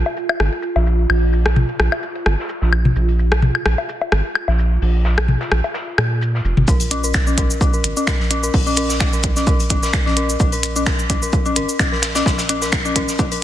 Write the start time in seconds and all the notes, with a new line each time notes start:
Already playing: F4
0.06 low woodblock
0.17 shaker
0.29 high woodblock, low woodblock
0.40 G#1, cross-stick
0.62 shaker
0.75 A#1, snare, low woodblock
0.87 shaker
1.09 A#1, open hi-hat, high woodblock
1.33 shaker
1.46 cross-stick, snare
1.56 mid tom, shaker
1.80 A#1, cross-stick
1.92 snare, high woodblock, low woodblock
2.02 shaker
2.15 closed hi-hat
2.26 G#1, cross-stick, shaker
2.39 snare
2.49 shaker
2.61 A#1, snare
2.73 high woodblock, shaker
2.85 mid tom
2.96 A#1, shaker
3.08 closed hi-hat
3.19 shaker
3.32 cross-stick
3.42 mid tom, shaker
3.55 high woodblock
3.66 A#1, cross-stick
3.78 low woodblock
3.89 shaker
4.02 low woodblock
4.12 G#1, cross-stick, shaker
4.35 high woodblock, shaker
4.48 A#1, snare, low woodblock
4.59 shaker
4.82 A#1, open hi-hat
5.05 snare, shaker
5.18 cross-stick, high woodblock
5.28 mid tom, shaker
5.41 snare, shaker
5.52 A#1, cross-stick
5.64 low woodblock, shaker
5.74 snare, shaker
5.98 A#2, cross-stick, high woodblock
6.22 shaker
6.35 snare
6.45 F1, shaker
6.57 G#1, mid tom
6.68 A#1 A#4, kick, shaker
6.80 closed hi-hat, cabasa
6.91 C#4, closed hi-hat, shaker
7.04 A#4, cabasa
7.14 finger snap, kick, snare, shaker
7.27 C#4, cabasa
7.38 A#1 A#4, kick, closed hi-hat, shaker
7.50 cabasa
7.61 C#4, kick, shaker
7.74 A#4, cabasa
7.84 G#1, closed hi-hat, shaker
7.97 C#4, cabasa
8.07 A#4, finger snap, kick, snare, shaker
8.20 A#1, snare
8.31 C#4, closed hi-hat, shaker
8.43 A#4, cabasa
8.54 A#1, kick, open hi-hat
8.67 C#4, cabasa
8.76 A#4, closed hi-hat, shaker
8.89 snare, cabasa
9.00 C#4, finger snap, kick, snare, shaker
9.13 A#4, cabasa
9.23 A#1, kick, closed hi-hat, shaker
9.36 C#4, snare, cabasa
9.47 A#4, kick, shaker
9.60 closed hi-hat, cabasa
9.70 G#1 C#4, kick, closed hi-hat, shaker
9.83 A#4, snare, cabasa
9.93 finger snap, kick, snare, shaker
10.06 A#1 C#4, snare
10.17 A#4, closed hi-hat, shaker
10.29 cabasa
10.40 A#1 C#4, kick, shaker
10.52 A#4, closed hi-hat, cabasa
10.63 closed hi-hat, shaker
10.76 C#4, cabasa
10.86 A#4, finger snap, kick, snare, shaker
10.99 cabasa
11.10 A#1 C#4, kick, closed hi-hat, shaker
11.22 A#4, cabasa
11.33 kick, shaker
11.46 C#4, cabasa
11.56 G#1 A#4, closed hi-hat, shaker
11.69 cabasa
11.79 C#4, finger snap, kick, snare, shaker
11.92 A#1 A#4, snare
12.02 snare, closed hi-hat, shaker
12.15 C#4, snare, cabasa, shaker
12.26 A#1 A#4, kick, snare, shaker
12.38 snare, cabasa, shaker
12.49 C#4, closed hi-hat, shaker
12.62 A#4, snare, cabasa
12.72 finger snap, kick, snare, shaker
12.85 C#4, cabasa
12.96 A#1 A#4, kick, closed hi-hat, shaker
13.08 snare, cabasa
13.19 C#4, kick, shaker
13.32 A#4, closed hi-hat, cabasa